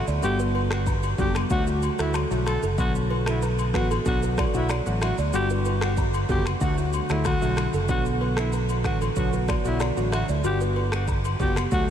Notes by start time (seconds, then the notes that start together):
0.07 D2 D5, shaker
0.22 G1 D3 G3 B3 F#4 G4, high agogo, shaker
0.39 B4, shaker
0.55 B4, high agogo
0.71 F#4, finger snap, cross-stick, shaker
0.86 kick, low woodblock, shaker
1.03 high agogo, shaker
1.18 F#1 D3 G3 B3 F#4 G4, kick, shaker
1.35 finger snap, cross-stick, high agogo, shaker
1.50 D2 D3 F#3 A3 F#4, kick, shaker
1.67 F#4, shaker
1.83 high agogo, shaker
1.99 D2 D3 F#3 A3 E4 F#4 A4, finger snap, cross-stick, shaker
2.14 finger snap, cross-stick, high agogo, low woodblock, shaker
2.31 B1 D3 F#3 A3 F#4, shaker
2.46 A4, finger snap, cross-stick, high agogo, shaker
2.63 F#1 A4, shaker
2.78 B1 D3 F#3 B3 F#4, kick, high agogo, shaker
2.95 shaker
3.10 B4, high agogo
3.26 E4 A4, finger snap, cross-stick, shaker
3.42 B4, low woodblock, shaker
3.59 high agogo, shaker
3.74 A1 D3 F#3 B3 F#4 B4, finger snap, kick, cross-stick, shaker
3.91 A4, high agogo, shaker
4.05 B1 D3 F#3 B3 F#4, kick, shaker
4.23 B4, shaker
4.38 D5, finger snap, kick, cross-stick, high agogo, shaker
4.54 B1 D3 F#3 B3 E4 F#4, shaker
4.69 D5, finger snap, cross-stick, high agogo, low woodblock, shaker
4.86 A1 D3 F#3 B3 F#4, shaker
5.02 F#4 E5, finger snap, cross-stick, high agogo, shaker
5.18 D2 D5, shaker
5.33 G1 D3 G3 B3 F#4 G4, high agogo, shaker
5.50 B4, shaker
5.65 B4, high agogo, shaker
5.81 F#4, finger snap, cross-stick, shaker
5.97 kick, low woodblock, shaker
6.14 high agogo, shaker
6.29 F#1 D3 G3 B3 F#4 G4, kick, shaker
6.46 finger snap, cross-stick, high agogo, shaker
6.61 D2 D3 F#3 A3 F#4, kick, shaker
6.78 F#4, shaker
6.93 high agogo, shaker
7.10 D2 D3 F#3 A3 E4 F#4 A4, finger snap, cross-stick, shaker
7.25 F#4, finger snap, kick, cross-stick, high agogo, low woodblock, shaker
7.41 B1 D3 F#3 A3 F#4, shaker
7.57 finger snap, cross-stick, high agogo, shaker
7.73 F#1 A4, shaker
7.89 B1 D3 F#3 B3 F#4, kick, high agogo, shaker
8.05 shaker
8.21 B4, high agogo
8.37 E4 A4, finger snap, cross-stick, shaker
8.53 B4, low woodblock, shaker
8.69 high agogo, shaker
8.84 A1 D3 F#3 B3 F#4 B4, finger snap, kick, cross-stick, shaker
9.01 A4, high agogo, shaker
9.16 B1 D3 F#3 B3 F#4, kick, shaker
9.33 B4, shaker
9.48 D5, finger snap, kick, cross-stick, high agogo, shaker
9.65 B1 D3 F#3 B3 E4 F#4, shaker
9.80 D5, finger snap, cross-stick, high agogo, low woodblock, shaker
9.97 A1 D3 F#3 B3 F#4, shaker
10.12 F#4 E5, finger snap, cross-stick, high agogo, shaker
10.29 D2 D5, shaker
10.44 G1 D3 G3 B3 F#4 G4, high agogo, shaker
10.61 B4, shaker
10.76 B4, high agogo
10.92 F#4, finger snap, cross-stick, shaker
11.08 kick, low woodblock, shaker
11.25 high agogo, shaker
11.40 F#1 D3 G3 B3 F#4 G4, kick, shaker
11.56 finger snap, cross-stick, high agogo, shaker
11.71 D2 D3 F#3 A3 F#4, kick, shaker